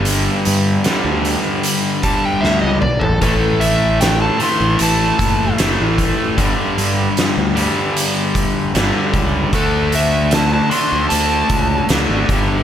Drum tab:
HH |x-x-x-x-x-x-----|x-x-x-x-x-x-x-x-|x-x-x-x-x-x-x-x-|x-x-x-x-x-x-x-x-|
SD |----o-------o---|----o-------o---|----o-------o---|----o-------o---|
T2 |--------------o-|----------------|----------------|----------------|
FT |---------------o|----------------|----------------|----------------|
BD |----------o-----|o---------o---o-|o---------o---o-|o---------o---o-|